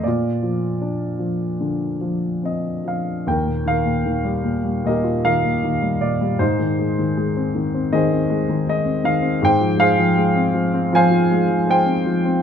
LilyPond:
<<
  \new Staff \with { instrumentName = "Grand piano" } { \time 4/4 \key bes \major \tempo 4 = 78 << { d''2. ees''8 f''8 | \key ees \major g''8 f''4. ees''8 f''4 d''8 | c''2 ees''4 ees''8 f''8 | g''8 f''4. aes''4 g''4 | } \\ { f'2. r4 | bes'8 bes'4. <g' bes'>8 bes'4. | <ees' aes'>2 <aes' c''>2 | c''8 <aes' c''>4. <c'' f''>4 c''4 | } >> }
  \new Staff \with { instrumentName = "Grand piano" } { \clef bass \time 4/4 \key bes \major bes,8 f8 d'8 f8 d8 f8 c'8 f8 | \key ees \major ees,16 bes,16 ees16 bes,16 ees16 g16 bes,16 g16 bes,16 f'16 ees16 bes,16 ees16 g16 bes,16 g16 | aes,16 ees16 aes16 ees16 aes16 c'16 ees16 c'16 ees16 c'16 aes16 ees16 aes16 c'16 ees16 c'16 | aes,16 f16 aes16 f16 aes16 c'16 f16 c'16 f16 f'16 aes16 f16 aes16 c'16 f16 c'16 | }
>>